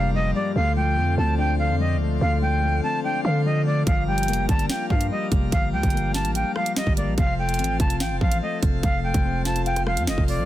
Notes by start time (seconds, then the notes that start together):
Already playing: F1 G2 F3 G3 A#3 D4 F4 A#4 F5
0.14 F3 D#5
0.35 G3 D5
0.55 D2 D3 C5 F5
0.76 F3 G5
0.97 F2 A3
1.18 D2 C4 A5
1.38 D4 G5
1.59 D3 F5
1.70 F2
1.80 F3 D#5
1.95 D2
2.01 A3
2.21 D2 D3 F5
2.42 F3 G5
2.63 A3
2.83 C4 A5
3.04 D4 G5
3.25 D3 F5
3.45 F3 D#5
3.66 A3 D5
3.87 G1 F3 G3 A#4 F5, kick, closed hi-hat
4.07 G3 G5
4.18 closed hi-hat
4.23 closed hi-hat
4.28 F1 A#3, closed hi-hat
4.33 closed hi-hat
4.39 G1
4.49 G1 D4 A5, kick, closed hi-hat
4.59 closed hi-hat
4.69 F4 G5, snare
4.90 G2 F3 F5, kick
5.01 closed hi-hat
5.11 G3 D#5
5.32 F1 A#3, kick, closed hi-hat
5.52 G1 F3 F5, kick, closed hi-hat
5.73 D2 G3 G5
5.83 G1, kick, closed hi-hat
5.90 A#3, closed hi-hat
5.97 closed hi-hat
6.14 D4 A5, snare, closed hi-hat
6.25 A1, closed hi-hat
6.35 F4 G5, closed hi-hat
6.56 F3 F5, cross-stick
6.66 closed hi-hat
6.76 G3 D#5, snare, closed hi-hat
6.87 G1, kick
6.97 A#3 D5, closed hi-hat
7.07 A#1
7.18 F1 F3 F4 A4 C5 F5, kick, closed hi-hat
7.38 A3 G5
7.49 closed hi-hat
7.54 closed hi-hat
7.59 A1 C4, closed hi-hat
7.64 closed hi-hat
7.80 F1 F4 A5, kick, closed hi-hat
7.90 closed hi-hat
8.00 A1 F5 G5, snare
8.11 F1
8.21 A1 F3 F5, kick
8.32 closed hi-hat
8.42 A3 D#5
8.63 F1 C4, kick, closed hi-hat
8.83 F1 F3 F5, kick, closed hi-hat
9.04 A3 G5
9.14 F1, kick, closed hi-hat
9.25 C4
9.45 F4 A5, snare, closed hi-hat
9.56 closed hi-hat
9.66 F5 G5, closed hi-hat
9.76 cross-stick, closed hi-hat
9.87 F3 F5, cross-stick
9.97 F2, closed hi-hat
10.07 F1 A3 D#5, snare, closed hi-hat
10.18 F1, kick
10.28 C4 D5, open hi-hat
10.38 C2